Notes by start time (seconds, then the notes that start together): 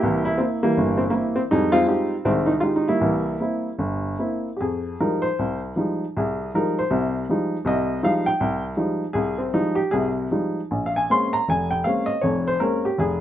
Already playing: A#3 E4 G4
0.03 C2 E3
0.25 E4
0.38 A#3 C4 E4
0.63 E3 G3 A#3
0.77 G1
0.97 C4
1.10 A#3 E4
1.14 C4
1.36 C4
1.51 F2 G3 G#3 D#4
1.72 G#3 C4 F4
1.87 G#3 D#4 F4 G4
2.25 C2 D#3 G#3 C4
2.46 D#4
2.60 G#3 D#4 F4 G4
2.76 D#4
2.88 G3 A#3 E4
3.01 C2 E3
3.40 A#3 C4 E4
3.79 G1
4.19 A#3 C4 E4
4.57 F2 G4
4.61 G#4
5.00 F3 G3 G#3 D#4 A#4
5.22 C5
5.39 C2
5.76 F3 G3 G#3 D#4
6.17 C2 G#4
6.54 F3 G3 G#3 D#4 A#4
6.79 C5
6.90 C2 C3
7.29 F3 G3 G#3 D#4
7.65 C2 C3 D#5
8.03 F3 G3 G#3 D#4 F5
8.26 G5
8.40 C2
8.77 F3 G3 G#3 D#4
9.13 C2 G#4
9.38 C4
9.54 F3 G3 G#3 D#4
9.75 G4
9.91 C2 C3 G#4
10.31 F3 G3 G#3 D#4
10.71 A#1
10.86 F5
10.96 G#5
11.10 G#3 A#3 C4 C#4 C6
11.33 A#5
11.48 F1 G#5
11.71 G5
11.84 G#3 A#3 C4 C#4 F5
12.06 D#5
12.21 F1 F2 C#5
12.47 C5
12.60 G#3 A#3 C4 C#4 A#4
12.85 G4
12.98 F1 G#4